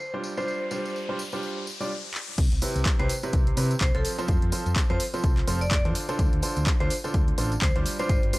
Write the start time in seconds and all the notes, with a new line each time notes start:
Already playing: riser
0.00 C5, tambourine
0.14 G3 D4 F4 G4 C5
0.24 tambourine
0.37 G3 D4 F4 G4 C5, tambourine
0.47 C5, tambourine
0.71 G3 D4 F4 G4 C5, tambourine
0.85 tambourine
0.96 tambourine
1.09 G3 D4 F4 G4 C5
1.19 tambourine
1.32 G3 D4 F4 G4 C5, tambourine
1.43 tambourine
1.67 tambourine
1.81 G3 D4 F4 G4 D5, tambourine
2.14 clap
2.38 C2, kick, closed hi-hat, crash, tambourine
2.52 C2, closed hi-hat
2.62 C3 C4 E4 G4 B4, open hi-hat, tambourine
2.76 C2, closed hi-hat, tambourine
2.86 kick, clap, closed hi-hat, tambourine
2.99 C2 C3 C4 E4 G4 B4 C5, closed hi-hat
3.09 open hi-hat, tambourine
3.23 C3 C4 E4 G4 B4, closed hi-hat, tambourine
3.33 C2, kick, closed hi-hat, tambourine
3.47 closed hi-hat
3.57 C3 C4 E4 G4 B4, open hi-hat, tambourine
3.71 closed hi-hat, tambourine
3.81 C2 C5, kick, clap, closed hi-hat, tambourine
3.95 C2 F3 C4 F4 A4 C5, closed hi-hat
4.05 open hi-hat, tambourine
4.18 F3 C4 F4 A4 C5, closed hi-hat, tambourine
4.28 F2, kick, closed hi-hat, tambourine
4.42 F2, closed hi-hat
4.52 F3 C4 F4 A4 C5, open hi-hat, tambourine
4.66 F2, closed hi-hat, tambourine
4.76 kick, clap, closed hi-hat, tambourine
4.90 F2 F3 C4 F4 A4 C5, closed hi-hat
5.00 open hi-hat, tambourine
5.14 F3 C4 F4 A4 C5, closed hi-hat, tambourine
5.24 C2, kick, closed hi-hat, tambourine
5.38 clap, closed hi-hat
5.47 F1 F3 C4 F4 A4 C5, open hi-hat, tambourine
5.61 D5, closed hi-hat, tambourine
5.71 D5, kick, clap, closed hi-hat
5.85 F2 D3 D4 F4 A4 C5, closed hi-hat
5.95 open hi-hat, tambourine
6.09 D3 D4 F4 A4 C5, closed hi-hat, tambourine
6.19 D2, kick, closed hi-hat, tambourine
6.33 D2, closed hi-hat
6.42 D3 D4 F4 A4 C5, open hi-hat, tambourine
6.56 D2, closed hi-hat, tambourine
6.66 kick, clap, closed hi-hat, tambourine
6.80 D2 D3 D4 F4 A4 C5, closed hi-hat
6.90 open hi-hat, tambourine
7.04 D3 D4 F4 A4 C5, closed hi-hat, tambourine
7.14 D2, kick, closed hi-hat, tambourine
7.28 closed hi-hat
7.38 A1 D3 D4 F4 A4 C5, open hi-hat, tambourine
7.52 closed hi-hat, tambourine
7.62 D2 C5, kick, clap, closed hi-hat, tambourine
7.76 D2 G3 D4 F4 G4 C5, closed hi-hat
7.86 open hi-hat, tambourine
7.99 G3 D4 F4 G4 C5, closed hi-hat, tambourine
8.09 G1 C5, kick, closed hi-hat, tambourine
8.23 G1, closed hi-hat
8.33 G3 D4 F4 G4 C5, open hi-hat, tambourine